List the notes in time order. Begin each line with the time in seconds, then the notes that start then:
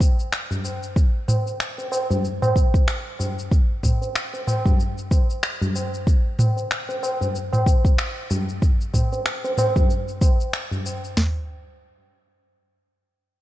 0.00 kick, tabla na, cabasa
0.20 cabasa
0.33 finger snap, cabasa
0.51 tabla ge, cabasa
0.65 tabla na, cabasa
0.83 cabasa
0.96 kick, cabasa
1.28 mid tom, tabla na, cabasa
1.46 tabla tin, cabasa
1.60 finger snap, cabasa
1.78 tabla tin, cabasa
1.92 tabla na, tabla tin, cabasa
2.10 tabla tin, tabla ge, cabasa
2.25 cabasa
2.42 mid tom, tabla na, cabasa
2.55 kick, tabla na, cabasa
2.74 kick, cabasa
2.88 finger snap, cabasa
3.19 tabla na, tabla tin, tabla ge, cabasa
3.39 cabasa
3.51 kick, cabasa
3.83 kick, mid tom, tabla na, cabasa
4.02 tabla tin, cabasa
4.15 finger snap, cabasa
4.34 tabla tin, cabasa
4.47 mid tom, tabla na, tabla tin, cabasa
4.66 kick, tabla tin, tabla ge, cabasa
4.80 cabasa
4.98 cabasa
5.11 kick, tabla na, cabasa
5.30 cabasa
5.43 finger snap, cabasa
5.62 tabla ge, cabasa
5.75 tabla na, cabasa
5.94 cabasa
6.07 kick, cabasa
6.39 mid tom, tabla na, cabasa
6.57 tabla tin, cabasa
6.71 finger snap, cabasa
6.89 tabla tin, cabasa
7.03 tabla na, tabla tin, cabasa
7.21 tabla tin, tabla ge, cabasa
7.36 cabasa
7.53 mid tom, tabla na, cabasa
7.66 kick, tabla na, cabasa
7.85 kick, cabasa
7.98 finger snap, cabasa
8.30 tabla na, tabla tin, tabla ge, cabasa
8.49 cabasa
8.62 kick, cabasa
8.81 cabasa
8.94 kick, mid tom, tabla na, cabasa
9.13 tabla tin, cabasa
9.26 finger snap, cabasa
9.45 tabla tin, cabasa
9.57 mid tom, tabla na, tabla tin, cabasa
9.76 kick, tabla tin, tabla ge, cabasa
9.90 cabasa
10.08 cabasa
10.21 kick, tabla na, cabasa
10.40 cabasa
10.53 finger snap, cabasa
10.71 tabla ge, cabasa
10.86 tabla na, cabasa
11.04 cabasa
11.17 snare, floor tom, open hi-hat